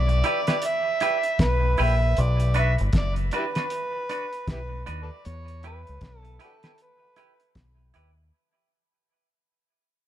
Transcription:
Already playing: fingered electric bass B1, harmonica D5
0.09 closed hi-hat
0.24 clean electric guitar E4 G4 B4, closed hi-hat
0.47 clean electric guitar E4 G4 B4, snare, closed hi-hat
0.62 closed hi-hat
0.67 harmonica E5
1.00 clean electric guitar E4 G4 B4, closed hi-hat
1.23 closed hi-hat
1.39 fingered electric bass B1, harmonica B4, kick, snare, closed hi-hat
1.77 fingered electric bass A#1, clean electric guitar E4 G4 B4, open hi-hat
1.82 harmonica E5
2.17 fingered electric bass B1, closed hi-hat
2.21 harmonica D5
2.40 closed hi-hat
2.54 clean electric guitar D4 F#4 B4, closed hi-hat
2.59 harmonica E5
2.78 fingered electric bass G1, closed hi-hat
2.93 fingered electric bass F#1, kick, snare, closed hi-hat
2.97 harmonica D5
3.16 closed hi-hat
3.31 clean electric guitar D4 F#4 B4, closed hi-hat
3.37 harmonica E4 G4 B4
3.55 clean electric guitar D4 F#4 B4, snare, closed hi-hat
3.70 closed hi-hat
4.09 clean electric guitar D4 F#4 B4, closed hi-hat
4.33 closed hi-hat
4.47 fingered electric bass B1, harmonica E4 G4 B4, kick, snare, closed hi-hat
4.86 fingered electric bass D#2, clean electric guitar D4 F#4 B4, closed hi-hat
5.02 harmonica A4 B4 D5
5.25 fingered electric bass E2, harmonica C#5, closed hi-hat
5.48 closed hi-hat
5.63 clean electric guitar E4 G4 B4, harmonica B4, closed hi-hat
5.87 fingered electric bass C#2, closed hi-hat
6.01 fingered electric bass B1, kick, snare, closed hi-hat
6.19 harmonica A4
6.25 closed hi-hat
6.39 clean electric guitar E4 G4 B4, closed hi-hat
6.44 harmonica D4 F#4 A4
6.63 clean electric guitar E4 G4 B4, snare, closed hi-hat
6.78 closed hi-hat
6.82 harmonica B4
7.16 clean electric guitar E4 G4 B4, closed hi-hat
7.40 closed hi-hat
7.55 fingered electric bass B1, kick, snare, closed hi-hat
7.94 fingered electric bass D#2, clean electric guitar E4 G4 B4, closed hi-hat

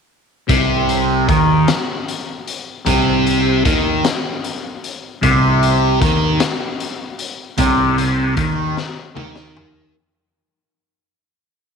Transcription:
0.48 fingered electric bass C2, distorted electric guitar C3, kick, closed hi-hat
0.89 closed hi-hat
1.29 fingered electric bass D#2, distorted electric guitar D#3, kick, closed hi-hat
1.68 snare, closed hi-hat
2.08 closed hi-hat
2.47 closed hi-hat
2.85 fingered electric bass C2, distorted electric guitar C3, kick, closed hi-hat
3.27 closed hi-hat
3.65 fingered electric bass D#2, distorted electric guitar D#3, kick, closed hi-hat
4.04 snare, closed hi-hat
4.44 closed hi-hat
4.84 closed hi-hat
5.22 fingered electric bass C2, distorted electric guitar C3, kick, closed hi-hat
5.63 closed hi-hat
6.01 fingered electric bass D#2, distorted electric guitar D#3, kick, closed hi-hat
6.40 snare, closed hi-hat
6.80 closed hi-hat
7.19 closed hi-hat
7.58 fingered electric bass C2, distorted electric guitar C3, kick, closed hi-hat
7.98 closed hi-hat
8.37 fingered electric bass D#2, distorted electric guitar D#3, kick, closed hi-hat
8.77 snare
9.15 fingered electric bass D#2, distorted electric guitar D#3, mid tom
9.36 snare
9.57 floor tom

